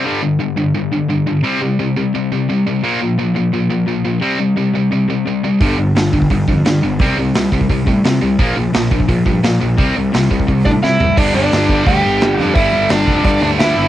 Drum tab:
CC |----------------|----------------|----------------|----------------|
HH |----------------|----------------|----------------|----------------|
SD |----------------|----------------|----------------|----------------|
FT |----------------|----------------|----------------|----------------|
BD |----------------|----------------|----------------|----------------|

CC |----------------|----------------|----------------|----------------|
HH |o---o---o---o---|o---o---o---o---|o---o---o---o---|o---o---o-------|
SD |----o-------o---|----o-------o---|----o-------o---|----o-------o---|
FT |----------------|----------------|----------------|--------------o-|
BD |o-----ooo-o-----|o-----ooo-o-----|o-----ooo-o-----|o-----ooo-o-----|

CC |x---------------|----------------|
HH |----o---o---o---|o---o---o---o---|
SD |----o-------o---|----o-------o---|
FT |----------------|----------------|
BD |o-----o-o-------|o-----o-o-------|